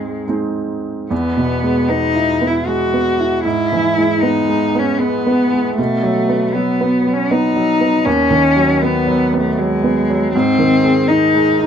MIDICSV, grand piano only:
0, 0, Header, 1, 2, 480
1, 0, Start_track
1, 0, Key_signature, 4, "major"
1, 0, Tempo, 829876
1, 640, Time_signature, 3, 2, 24, 8
1, 640, Tempo, 778210
1, 3520, Tempo, 759494
1, 7242, End_track
2, 0, Start_track
2, 0, Title_t, "Grand piano"
2, 0, Program_c, 0, 0
2, 0, Control_c, 0, 64, 127
2, 0, Note_on_c, 0, 44, 31
2, 0, Note_on_c, 0, 56, 23
2, 0, Note_on_c, 0, 60, 25
2, 0, Note_on_c, 0, 63, 27
2, 139, Note_off_c, 0, 56, 0
2, 139, Note_off_c, 0, 60, 0
2, 140, Note_off_c, 0, 63, 0
2, 161, Note_on_c, 0, 56, 23
2, 168, Note_on_c, 0, 60, 24
2, 168, Note_on_c, 0, 63, 24
2, 616, Note_off_c, 0, 56, 0
2, 619, Note_off_c, 0, 60, 0
2, 619, Note_off_c, 0, 63, 0
2, 639, Note_on_c, 0, 40, 40
2, 652, Control_c, 0, 64, 0
2, 653, Note_off_c, 0, 44, 0
2, 739, Control_c, 0, 64, 127
2, 802, Note_on_c, 0, 47, 31
2, 965, Note_on_c, 0, 56, 29
2, 1061, Note_off_c, 0, 47, 0
2, 1126, Note_on_c, 0, 59, 29
2, 1222, Note_off_c, 0, 56, 0
2, 1286, Note_on_c, 0, 64, 33
2, 1383, Note_off_c, 0, 59, 0
2, 1447, Note_on_c, 0, 59, 30
2, 1542, Note_off_c, 0, 64, 0
2, 1605, Note_on_c, 0, 56, 34
2, 1701, Note_off_c, 0, 59, 0
2, 1768, Note_on_c, 0, 59, 29
2, 1860, Note_off_c, 0, 56, 0
2, 1929, Note_on_c, 0, 64, 34
2, 2021, Note_off_c, 0, 59, 0
2, 2059, Note_off_c, 0, 40, 0
2, 2085, Note_on_c, 0, 44, 40
2, 2087, Note_off_c, 0, 64, 0
2, 2094, Control_c, 0, 64, 0
2, 2195, Control_c, 0, 64, 127
2, 2255, Note_on_c, 0, 52, 32
2, 2413, Note_on_c, 0, 56, 32
2, 2507, Note_off_c, 0, 52, 0
2, 2564, Note_on_c, 0, 59, 34
2, 2664, Note_off_c, 0, 56, 0
2, 2725, Note_on_c, 0, 56, 33
2, 2818, Note_off_c, 0, 59, 0
2, 2888, Note_on_c, 0, 59, 32
2, 2979, Note_off_c, 0, 56, 0
2, 3036, Note_on_c, 0, 56, 33
2, 3142, Note_off_c, 0, 59, 0
2, 3204, Note_on_c, 0, 59, 33
2, 3296, Note_off_c, 0, 56, 0
2, 3371, Note_on_c, 0, 56, 34
2, 3458, Note_off_c, 0, 59, 0
2, 3496, Note_off_c, 0, 44, 0
2, 3525, Note_off_c, 0, 56, 0
2, 3525, Note_on_c, 0, 47, 43
2, 3533, Control_c, 0, 64, 0
2, 3619, Control_c, 0, 64, 127
2, 3681, Note_on_c, 0, 54, 36
2, 3845, Note_on_c, 0, 59, 33
2, 3941, Note_off_c, 0, 54, 0
2, 4010, Note_on_c, 0, 54, 35
2, 4106, Note_off_c, 0, 59, 0
2, 4173, Note_on_c, 0, 59, 37
2, 4269, Note_off_c, 0, 54, 0
2, 4339, Note_on_c, 0, 54, 35
2, 4430, Note_off_c, 0, 59, 0
2, 4492, Note_on_c, 0, 59, 33
2, 4591, Note_off_c, 0, 54, 0
2, 4649, Note_on_c, 0, 54, 33
2, 4745, Note_off_c, 0, 59, 0
2, 4804, Note_on_c, 0, 59, 33
2, 4901, Note_off_c, 0, 54, 0
2, 4942, Note_off_c, 0, 47, 0
2, 4963, Note_off_c, 0, 59, 0
2, 4963, Note_on_c, 0, 39, 46
2, 4977, Control_c, 0, 64, 0
2, 5087, Control_c, 0, 64, 127
2, 5118, Note_on_c, 0, 51, 37
2, 5281, Note_on_c, 0, 54, 38
2, 5376, Note_off_c, 0, 51, 0
2, 5451, Note_on_c, 0, 59, 38
2, 5539, Note_off_c, 0, 54, 0
2, 5603, Note_on_c, 0, 54, 39
2, 5705, Note_off_c, 0, 59, 0
2, 5770, Note_on_c, 0, 59, 37
2, 5861, Note_off_c, 0, 54, 0
2, 5928, Note_on_c, 0, 54, 38
2, 6023, Note_off_c, 0, 59, 0
2, 6086, Note_on_c, 0, 59, 35
2, 6181, Note_off_c, 0, 54, 0
2, 6255, Note_on_c, 0, 54, 41
2, 6340, Note_off_c, 0, 59, 0
2, 6376, Note_off_c, 0, 39, 0
2, 6408, Note_off_c, 0, 54, 0
2, 6412, Note_on_c, 0, 44, 49
2, 6413, Control_c, 0, 64, 0
2, 6498, Control_c, 0, 64, 127
2, 6561, Note_on_c, 0, 51, 36
2, 6724, Note_on_c, 0, 56, 39
2, 6815, Note_off_c, 0, 51, 0
2, 6883, Note_on_c, 0, 63, 41
2, 6977, Note_off_c, 0, 56, 0
2, 7043, Note_on_c, 0, 56, 40
2, 7137, Note_off_c, 0, 63, 0
2, 7195, Note_on_c, 0, 63, 39
2, 7242, Note_off_c, 0, 44, 0
2, 7242, Note_off_c, 0, 56, 0
2, 7242, Note_off_c, 0, 63, 0
2, 7242, End_track
0, 0, End_of_file